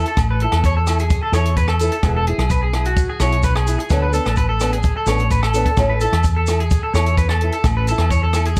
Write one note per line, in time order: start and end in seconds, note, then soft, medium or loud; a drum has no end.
0.06 0.18 A4 medium
0.06 closed hi-hat soft
0.06 maracas soft
0.17 0.45 A1 medium
0.17 kick medium
0.17 cross-stick medium
0.17 closed hi-hat soft
0.17 low agogo medium
0.17 maracas medium
0.31 0.41 B4 medium
0.40 0.56 E4 soft
0.40 0.64 A4 medium
0.40 muted steel-string acoustic guitar stroke medium
0.40 closed hi-hat soft
0.52 1.17 E2 medium
0.52 cross-stick medium
0.52 closed hi-hat soft
0.52 low agogo medium
0.64 0.76 C#5 medium
0.64 kick medium
0.64 closed hi-hat soft
0.64 maracas medium
0.77 0.98 A4 medium
0.87 1.02 E4 soft
0.87 1.01 A4 medium
0.87 cross-stick medium
0.87 closed hi-hat soft
0.87 low agogo medium
0.87 maracas loud
0.99 1.22 G#4 medium
0.99 closed hi-hat soft
0.99 maracas soft
1.10 kick medium
1.10 closed hi-hat soft
1.10 maracas medium
1.23 1.34 A4 medium
1.32 1.88 E2 medium
1.32 1.49 E4 soft
1.32 1.47 A4 medium
1.32 1.56 C#5 medium
1.32 cross-stick medium
1.32 closed hi-hat soft
1.32 low agogo medium
1.32 maracas medium
1.45 closed hi-hat soft
1.45 maracas soft
1.57 1.68 B4 medium
1.57 kick medium
1.57 closed hi-hat soft
1.57 maracas medium
1.68 1.91 A4 medium
1.68 cross-stick medium
1.68 low agogo medium
1.79 1.96 E4 soft
1.79 1.95 A4 medium
1.79 closed hi-hat soft
1.79 maracas medium
1.92 2.03 A4 medium
1.92 closed hi-hat soft
1.92 maracas soft
2.03 2.31 E1 medium
2.03 2.18 B3 medium
2.03 2.18 E4 medium
2.03 2.19 G#4 medium
2.03 kick medium
2.03 cross-stick medium
2.03 closed hi-hat soft
2.03 low agogo medium
2.03 maracas medium
2.16 2.27 A4 medium
2.27 2.42 E4 soft
2.27 2.41 G#4 medium
2.27 2.50 G#4 medium
2.27 closed hi-hat medium
2.38 3.03 B1 medium
2.38 cross-stick medium
2.38 closed hi-hat soft
2.38 low agogo medium
2.50 2.62 B4 medium
2.50 kick medium
2.50 closed hi-hat soft
2.50 maracas medium
2.63 2.85 G#4 medium
2.73 2.88 E4 soft
2.73 2.88 G#4 medium
2.73 cross-stick medium
2.73 closed hi-hat soft
2.73 low agogo medium
2.85 3.08 F#4 medium
2.85 closed hi-hat soft
2.85 maracas soft
2.96 kick medium
2.96 closed hi-hat soft
2.96 maracas medium
3.09 3.20 G#4 medium
3.20 3.76 B1 medium
3.20 3.35 E4 soft
3.20 3.34 G#4 medium
3.20 3.43 C#5 medium
3.20 cross-stick medium
3.20 closed hi-hat soft
3.20 low agogo medium
3.20 maracas medium
3.32 closed hi-hat soft
3.32 maracas soft
3.43 3.55 B4 medium
3.43 kick medium
3.43 closed hi-hat soft
3.43 maracas medium
3.56 3.78 G#4 medium
3.56 cross-stick medium
3.56 low agogo medium
3.66 3.82 E4 soft
3.66 3.81 G#4 medium
3.66 closed hi-hat soft
3.66 maracas medium
3.79 3.90 G#4 medium
3.79 closed hi-hat soft
3.79 maracas soft
3.89 4.18 D2 medium
3.89 4.04 F#3 medium
3.89 4.04 B3 medium
3.89 4.05 D4 medium
3.89 4.05 A4 medium
3.89 kick medium
3.89 cross-stick medium
3.89 closed hi-hat soft
3.89 low agogo medium
3.89 maracas medium
4.02 4.13 B4 medium
4.12 4.28 B3 soft
4.12 4.28 D4 soft
4.12 4.27 A4 medium
4.12 4.36 A4 medium
4.12 closed hi-hat soft
4.12 maracas medium
4.25 4.90 A1 medium
4.25 cross-stick medium
4.25 closed hi-hat soft
4.25 low agogo medium
4.25 maracas soft
4.36 4.49 B4 medium
4.36 kick medium
4.36 closed hi-hat soft
4.36 maracas medium
4.49 4.71 A4 medium
4.60 4.75 B3 soft
4.60 4.75 D4 soft
4.60 4.75 A4 medium
4.60 cross-stick medium
4.60 closed hi-hat soft
4.60 low agogo medium
4.60 maracas medium
4.73 4.95 G#4 medium
4.73 closed hi-hat soft
4.73 maracas soft
4.83 kick medium
4.83 closed hi-hat soft
4.83 maracas medium
4.97 5.07 A4 medium
5.06 5.62 A1 medium
5.06 5.22 B3 soft
5.06 5.22 D4 soft
5.06 5.21 A4 soft
5.06 5.30 C#5 medium
5.06 cross-stick medium
5.06 closed hi-hat soft
5.06 low agogo medium
5.06 maracas medium
5.18 closed hi-hat soft
5.18 maracas soft
5.31 5.42 B4 medium
5.31 kick medium
5.31 closed hi-hat soft
5.31 maracas medium
5.43 5.65 A4 medium
5.43 cross-stick medium
5.43 low agogo medium
5.54 5.69 B3 soft
5.54 5.69 D4 soft
5.54 5.68 A4 medium
5.54 closed hi-hat soft
5.54 maracas medium
5.66 5.77 A4 medium
5.66 kick medium
5.66 closed hi-hat soft
5.66 maracas soft
5.77 6.05 A1 medium
5.77 5.92 C#4 medium
5.77 5.92 E4 medium
5.77 5.93 A4 medium
5.77 kick medium
5.77 cross-stick medium
5.77 closed hi-hat soft
5.77 low agogo medium
5.77 maracas medium
5.89 6.00 B4 medium
6.01 6.16 E4 soft
6.01 6.15 A4 medium
6.01 6.23 A4 medium
6.01 closed hi-hat soft
6.01 maracas medium
6.12 6.77 E2 medium
6.12 cross-stick medium
6.12 closed hi-hat soft
6.12 low agogo medium
6.23 kick medium
6.23 closed hi-hat soft
6.23 maracas medium
6.37 6.58 A4 medium
6.47 6.63 E4 soft
6.47 6.62 A4 medium
6.47 cross-stick medium
6.47 closed hi-hat soft
6.47 low agogo medium
6.47 maracas medium
6.60 6.82 G#4 medium
6.60 closed hi-hat soft
6.70 kick medium
6.70 closed hi-hat soft
6.70 maracas medium
6.83 6.94 A4 medium
6.93 7.49 E2 medium
6.93 7.09 E4 soft
6.93 7.08 A4 medium
6.93 7.16 C#5 medium
6.93 cross-stick medium
6.93 closed hi-hat soft
6.93 low agogo medium
6.93 maracas medium
7.06 closed hi-hat soft
7.06 maracas soft
7.17 7.29 B4 medium
7.17 kick medium
7.17 closed hi-hat soft
7.17 maracas medium
7.29 7.51 A4 medium
7.29 cross-stick medium
7.29 low agogo medium
7.41 7.56 E4 soft
7.41 7.55 A4 medium
7.41 closed hi-hat soft
7.52 7.64 A4 medium
7.52 closed hi-hat soft
7.52 maracas soft
7.64 7.91 A1 medium
7.64 kick medium
7.64 cross-stick medium
7.64 closed hi-hat soft
7.64 low agogo medium
7.64 maracas medium
7.77 7.87 B4 medium
7.87 8.03 E4 soft
7.87 8.10 A4 medium
7.87 closed hi-hat soft
7.87 maracas medium
7.98 8.60 E2 medium
7.98 cross-stick medium
7.98 closed hi-hat soft
7.98 low agogo medium
8.10 8.22 C#5 medium
8.10 kick medium
8.10 closed hi-hat soft
8.10 maracas medium
8.23 8.45 A4 medium
8.33 8.49 E4 soft
8.33 8.48 A4 soft
8.33 cross-stick medium
8.33 closed hi-hat soft
8.33 low agogo medium
8.33 maracas loud
8.45 8.60 G#4 medium
8.45 closed hi-hat soft
8.45 maracas soft
8.56 closed hi-hat soft
8.56 maracas medium